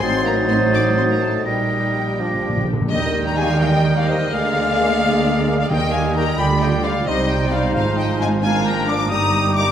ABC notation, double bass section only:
X:1
M:6/8
L:1/8
Q:3/8=87
K:Eb
V:1 name="Double bass section" clef=bass
=A,,,6 | B,,,4- B,,, z | E,,6 | D,,6 |
E,,3 D,,3 | C,,3 A,,,3- | A,,,3 G,,,3 |]